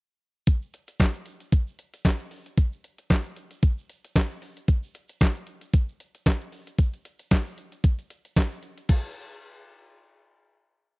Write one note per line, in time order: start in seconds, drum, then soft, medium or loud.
0.47 kick loud
0.47 closed hi-hat medium
0.47 shaker medium
0.62 shaker soft
0.73 closed hi-hat medium
0.73 shaker medium
0.87 closed hi-hat medium
0.87 shaker medium
1.00 kick loud
1.00 snare loud
1.00 clap medium
1.00 closed hi-hat medium
1.00 shaker medium
1.15 closed hi-hat soft
1.15 shaker soft
1.26 closed hi-hat medium
1.26 shaker medium
1.40 closed hi-hat soft
1.40 shaker medium
1.52 kick loud
1.52 closed hi-hat loud
1.52 shaker medium
1.67 shaker soft
1.79 closed hi-hat medium
1.79 shaker medium
1.94 closed hi-hat medium
1.94 shaker soft
2.05 kick loud
2.05 snare loud
2.05 clap medium
2.05 closed hi-hat medium
2.05 shaker medium
2.20 closed hi-hat soft
2.20 shaker medium
2.31 open hi-hat medium
2.31 shaker soft
2.46 closed hi-hat medium
2.46 shaker soft
2.58 kick loud
2.58 closed hi-hat medium
2.58 shaker medium
2.72 shaker medium
2.84 closed hi-hat medium
2.84 shaker soft
2.98 closed hi-hat medium
2.98 shaker soft
3.10 kick loud
3.10 snare loud
3.10 clap loud
3.10 closed hi-hat loud
3.10 shaker medium
3.25 closed hi-hat soft
3.25 shaker medium
3.36 closed hi-hat medium
3.36 shaker soft
3.51 closed hi-hat soft
3.51 shaker medium
3.63 kick loud
3.63 closed hi-hat loud
3.63 shaker medium
3.78 shaker medium
3.90 closed hi-hat medium
3.90 shaker medium
4.05 closed hi-hat medium
4.05 shaker medium
4.16 kick loud
4.16 snare loud
4.16 clap medium
4.16 closed hi-hat medium
4.16 shaker medium
4.30 closed hi-hat soft
4.30 shaker medium
4.42 open hi-hat medium
4.42 shaker soft
4.57 closed hi-hat medium
4.57 shaker soft
4.68 kick loud
4.68 closed hi-hat loud
4.68 shaker medium
4.83 shaker medium
4.94 closed hi-hat medium
4.94 shaker medium
5.08 closed hi-hat medium
5.08 shaker medium
5.21 kick loud
5.21 snare loud
5.21 clap medium
5.21 closed hi-hat loud
5.21 shaker medium
5.36 closed hi-hat soft
5.36 shaker medium
5.47 closed hi-hat medium
5.47 shaker soft
5.61 closed hi-hat soft
5.61 shaker medium
5.74 kick loud
5.74 closed hi-hat loud
5.74 shaker medium
5.88 shaker medium
6.00 closed hi-hat medium
6.00 shaker medium
6.15 closed hi-hat medium
6.15 shaker medium
6.26 kick loud
6.26 snare loud
6.26 clap medium
6.26 closed hi-hat medium
6.26 shaker medium
6.41 closed hi-hat soft
6.41 shaker medium
6.52 open hi-hat medium
6.52 shaker soft
6.67 closed hi-hat medium
6.67 shaker soft
6.78 kick loud
6.78 closed hi-hat medium
6.78 shaker medium
6.93 closed hi-hat soft
6.93 shaker soft
7.05 closed hi-hat medium
7.05 shaker medium
7.19 closed hi-hat medium
7.19 shaker soft
7.31 kick loud
7.31 snare loud
7.31 clap medium
7.31 closed hi-hat loud
7.31 shaker medium
7.46 closed hi-hat soft
7.46 shaker medium
7.58 closed hi-hat medium
7.58 shaker soft
7.72 closed hi-hat medium
7.72 shaker soft
7.84 kick loud
7.84 closed hi-hat loud
7.84 shaker medium
7.99 closed hi-hat soft
7.99 shaker soft
8.10 closed hi-hat medium
8.10 shaker medium
8.25 closed hi-hat medium
8.25 shaker medium
8.36 kick loud
8.36 snare loud
8.36 clap medium
8.36 closed hi-hat medium
8.36 shaker medium
8.51 shaker medium
8.63 closed hi-hat medium
8.63 shaker soft
8.78 closed hi-hat medium
8.78 shaker soft
8.89 kick loud
8.89 crash medium
8.89 shaker medium